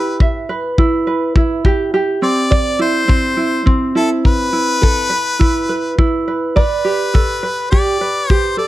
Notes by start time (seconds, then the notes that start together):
Already playing: E4 G4 B4
0.20 E5, kick
0.49 B4
0.78 E4, kick
1.07 B4
1.36 E4, kick
1.65 G4, kick
1.94 G4
2.22 C4 D5
2.51 D5, kick
2.79 E4 C5
3.08 C4, kick
3.37 E4
3.66 C4, kick
3.95 E4 A4
4.25 B4, kick
4.53 E4
4.82 A4, kick
5.10 B4
5.39 E4, kick
5.69 B4
5.98 E4, kick
6.28 B4
6.56 B4 D5, kick
6.85 G4
7.14 A4, kick
7.43 B4
7.71 G4 D5, kick
8.01 B4
8.30 G4 C5, kick
8.57 A4 D5